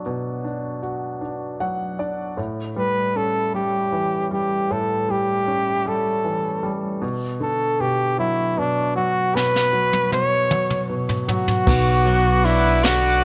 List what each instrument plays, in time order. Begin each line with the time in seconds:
Already playing: grand piano F#3 D4 F#4
0.06 grand piano B2
0.44 grand piano D4
0.83 grand piano F#4
1.21 grand piano D4
1.60 grand piano F#3 F#5
1.99 grand piano D4 D5
2.37 grand piano A2
2.76 grand piano G3, flugelhorn B4
3.15 grand piano C#4, flugelhorn A4
3.54 grand piano G3, flugelhorn G4
3.92 grand piano E3
4.31 grand piano G3, flugelhorn G4
4.71 grand piano A2, flugelhorn A4
5.08 grand piano G3, flugelhorn G4
5.47 grand piano C#4
5.86 grand piano G3, flugelhorn A4
6.24 grand piano E3
6.63 grand piano G3
7.01 grand piano B2
7.40 grand piano D3, flugelhorn A4
7.80 grand piano B2, flugelhorn G4
8.18 grand piano F#3, flugelhorn E4
8.57 grand piano B2, flugelhorn D4
8.96 grand piano F#3, flugelhorn F#4
9.35 grand piano B2, flugelhorn B4, snare
9.56 snare
9.73 grand piano F#3
9.93 high tom
10.12 grand piano B2, flugelhorn C#5, high tom
10.51 grand piano F#3, mid tom
10.70 mid tom
10.89 grand piano B2
11.09 floor tom
11.28 grand piano F#3, flugelhorn F#4, floor tom
11.48 floor tom
11.66 upright bass B1, grand piano B2, analog synth pad B4 F#5 C#6 D6, kick, crash
12.05 grand piano F#3, ride
12.44 grand piano D4, flugelhorn E4, ride
12.83 grand piano D3, flugelhorn F#4, snare, ride